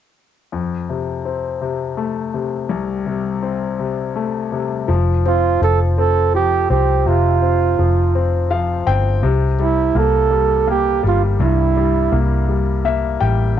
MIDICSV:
0, 0, Header, 1, 4, 480
1, 0, Start_track
1, 0, Key_signature, -1, "major"
1, 0, Tempo, 724638
1, 352, Time_signature, 6, 3, 24, 8
1, 9007, End_track
2, 0, Start_track
2, 0, Title_t, "Flugelhorn"
2, 0, Program_c, 0, 56
2, 3491, Note_on_c, 0, 65, 67
2, 3711, Note_off_c, 0, 65, 0
2, 3731, Note_on_c, 0, 69, 67
2, 3837, Note_off_c, 0, 69, 0
2, 3971, Note_on_c, 0, 69, 75
2, 4190, Note_off_c, 0, 69, 0
2, 4206, Note_on_c, 0, 67, 75
2, 4427, Note_off_c, 0, 67, 0
2, 4447, Note_on_c, 0, 67, 64
2, 4687, Note_on_c, 0, 65, 62
2, 4697, Note_off_c, 0, 67, 0
2, 5401, Note_off_c, 0, 65, 0
2, 6367, Note_on_c, 0, 64, 63
2, 6608, Note_on_c, 0, 69, 69
2, 6618, Note_off_c, 0, 64, 0
2, 7077, Note_off_c, 0, 69, 0
2, 7089, Note_on_c, 0, 67, 71
2, 7302, Note_off_c, 0, 67, 0
2, 7337, Note_on_c, 0, 65, 64
2, 7438, Note_off_c, 0, 65, 0
2, 7573, Note_on_c, 0, 64, 59
2, 8075, Note_off_c, 0, 64, 0
2, 9007, End_track
3, 0, Start_track
3, 0, Title_t, "Grand piano"
3, 0, Program_c, 1, 0
3, 347, Note_on_c, 1, 41, 37
3, 478, Control_c, 1, 64, 127
3, 593, Note_on_c, 1, 48, 29
3, 829, Note_on_c, 1, 60, 32
3, 1060, Note_off_c, 1, 48, 0
3, 1070, Note_on_c, 1, 48, 32
3, 1306, Note_on_c, 1, 57, 35
3, 1539, Note_off_c, 1, 48, 0
3, 1549, Note_on_c, 1, 48, 36
3, 1765, Note_off_c, 1, 60, 0
3, 1766, Note_off_c, 1, 41, 0
3, 1784, Note_on_c, 1, 36, 43
3, 2019, Note_off_c, 1, 48, 0
3, 2028, Note_on_c, 1, 48, 36
3, 2242, Note_off_c, 1, 57, 0
3, 2268, Note_on_c, 1, 60, 36
3, 2502, Note_off_c, 1, 48, 0
3, 2512, Note_on_c, 1, 48, 36
3, 2754, Note_on_c, 1, 57, 35
3, 2984, Note_off_c, 1, 48, 0
3, 2994, Note_on_c, 1, 48, 39
3, 3207, Note_off_c, 1, 36, 0
3, 3210, Note_off_c, 1, 60, 0
3, 3224, Note_off_c, 1, 57, 0
3, 3230, Note_off_c, 1, 48, 0
3, 3233, Note_on_c, 1, 53, 48
3, 3248, Control_c, 1, 64, 0
3, 3380, Control_c, 1, 64, 127
3, 3483, Note_on_c, 1, 60, 39
3, 3712, Note_off_c, 1, 53, 0
3, 3722, Note_on_c, 1, 53, 37
3, 3952, Note_off_c, 1, 60, 0
3, 3962, Note_on_c, 1, 60, 43
3, 4192, Note_off_c, 1, 53, 0
3, 4202, Note_on_c, 1, 53, 34
3, 4428, Note_off_c, 1, 60, 0
3, 4437, Note_on_c, 1, 60, 44
3, 4675, Note_on_c, 1, 48, 45
3, 4905, Note_off_c, 1, 60, 0
3, 4915, Note_on_c, 1, 60, 37
3, 5132, Note_off_c, 1, 53, 0
3, 5157, Note_on_c, 1, 53, 35
3, 5390, Note_off_c, 1, 60, 0
3, 5400, Note_on_c, 1, 60, 39
3, 5624, Note_off_c, 1, 53, 0
3, 5634, Note_on_c, 1, 53, 37
3, 5634, Note_on_c, 1, 77, 49
3, 5858, Note_off_c, 1, 77, 0
3, 5862, Note_off_c, 1, 60, 0
3, 5871, Note_on_c, 1, 60, 45
3, 5874, Note_on_c, 1, 79, 58
3, 6086, Note_off_c, 1, 48, 0
3, 6097, Note_off_c, 1, 79, 0
3, 6100, Note_off_c, 1, 53, 0
3, 6106, Note_off_c, 1, 60, 0
3, 6113, Note_on_c, 1, 48, 57
3, 6126, Control_c, 1, 64, 0
3, 6258, Control_c, 1, 64, 127
3, 6354, Note_on_c, 1, 55, 41
3, 6592, Note_on_c, 1, 58, 37
3, 6815, Note_off_c, 1, 55, 0
3, 6825, Note_on_c, 1, 55, 40
3, 7060, Note_off_c, 1, 58, 0
3, 7070, Note_on_c, 1, 58, 39
3, 7297, Note_off_c, 1, 55, 0
3, 7307, Note_on_c, 1, 55, 46
3, 7521, Note_off_c, 1, 48, 0
3, 7553, Note_on_c, 1, 43, 51
3, 7786, Note_off_c, 1, 55, 0
3, 7796, Note_on_c, 1, 55, 38
3, 8003, Note_off_c, 1, 58, 0
3, 8029, Note_on_c, 1, 58, 39
3, 8261, Note_off_c, 1, 55, 0
3, 8271, Note_on_c, 1, 55, 36
3, 8501, Note_off_c, 1, 58, 0
3, 8511, Note_on_c, 1, 58, 38
3, 8512, Note_on_c, 1, 76, 44
3, 8735, Note_off_c, 1, 76, 0
3, 8739, Note_off_c, 1, 55, 0
3, 8747, Note_on_c, 1, 79, 51
3, 8749, Note_on_c, 1, 55, 39
3, 8967, Note_off_c, 1, 43, 0
3, 8972, Note_off_c, 1, 79, 0
3, 8977, Note_off_c, 1, 58, 0
3, 8983, Note_off_c, 1, 55, 0
3, 9000, Control_c, 1, 64, 0
3, 9007, End_track
4, 0, Start_track
4, 0, Title_t, "Fingered electric bass"
4, 0, Program_c, 2, 33
4, 3236, Note_on_c, 2, 29, 56
4, 3694, Note_off_c, 2, 29, 0
4, 3720, Note_on_c, 2, 29, 71
4, 4415, Note_off_c, 2, 29, 0
4, 4439, Note_on_c, 2, 36, 72
4, 4665, Note_off_c, 2, 36, 0
4, 4680, Note_on_c, 2, 29, 67
4, 5132, Note_off_c, 2, 29, 0
4, 5160, Note_on_c, 2, 29, 58
4, 5851, Note_off_c, 2, 29, 0
4, 5875, Note_on_c, 2, 31, 69
4, 6100, Note_off_c, 2, 31, 0
4, 6111, Note_on_c, 2, 36, 59
4, 6564, Note_off_c, 2, 36, 0
4, 6589, Note_on_c, 2, 36, 59
4, 7280, Note_off_c, 2, 36, 0
4, 7311, Note_on_c, 2, 31, 74
4, 7535, Note_off_c, 2, 31, 0
4, 7549, Note_on_c, 2, 36, 73
4, 8003, Note_off_c, 2, 36, 0
4, 8030, Note_on_c, 2, 36, 69
4, 8724, Note_off_c, 2, 36, 0
4, 8753, Note_on_c, 2, 33, 61
4, 8978, Note_off_c, 2, 33, 0
4, 9007, End_track
0, 0, End_of_file